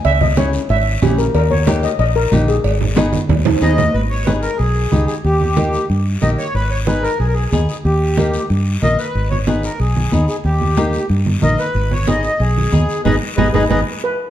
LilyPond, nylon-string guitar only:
\new Staff \with { instrumentName = "Nylon-string guitar" } { \time 4/4 \key gis \minor \tempo 4 = 184 r4 <cis' e' gis'>8 r4. <cis' e' gis'>8 r8 | r4 <ais dis' g'>8 r4. <ais dis' g'>8 r8 | r4 <b dis' gis'>8 r4. <b dis' gis'>8 r8 | r4 <b dis' gis'>8 r4. <b dis' g'>8 r8 |
r4 <ais dis' g'>8 r4. <ais dis' g'>8 r8 | r4 <b dis' gis'>8 r4. <b dis' gis'>8 r8 | r4 <ais dis' g'>8 r4. <ais dis' ais'>8 r8 | r4 <b dis' gis'>8 r4. <b dis' gis'>8 r8 |
r4 <ais dis' g'>8 r4. <ais dis' ais'>8 r8 | r4 <b dis' gis'>8 r4. <b dis' gis'>8 r8 | <b dis' gis'>8 r8 <b dis' gis'>8 <b dis' gis'>8 <b dis' gis'>8 r4. | }